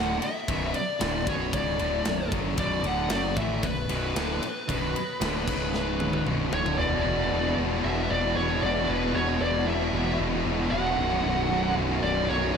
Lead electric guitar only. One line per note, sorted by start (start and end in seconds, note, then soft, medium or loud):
0.00 0.24 F#5 medium
0.23 0.75 E5 loud
0.76 1.28 D5 medium
1.29 1.53 C#5 medium
1.55 2.29 D5 medium
2.60 2.86 D5 loud
2.87 3.13 F#5 loud
3.11 3.37 D5 medium
3.38 3.64 E5 medium
3.64 6.22 B4 medium
6.53 6.78 C#5 loud
6.78 7.53 D5 loud
7.85 8.11 E5 loud
8.11 8.36 D5 medium
8.36 8.63 C#5 loud
8.63 8.90 D5 loud
8.90 9.16 B4 medium
9.15 9.41 C#5 medium
9.42 9.66 D5 loud
9.68 10.16 E5 medium
10.71 11.73 F#5 loud
12.03 12.29 D5 loud
12.29 12.56 C#5 loud